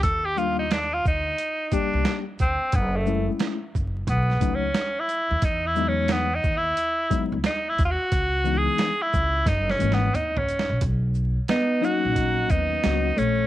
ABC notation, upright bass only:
X:1
M:4/4
L:1/16
Q:"Swing 16ths" 1/4=89
K:B
V:1 name="Upright bass" clef=bass
D,,6 =D,,2 z3 =C,, z2 D,, z | F,,,4 z2 F,,,2 B,,,2 C,,2 z3 D,, | E,,6 D,,2 z3 C,, z2 D,, z | C,,4 z2 C,,2 F,,,2 G,,,2 z3 A,,, |
B,,,4 z3 A,,,3 D,,2 C,,2 A,,,2 |]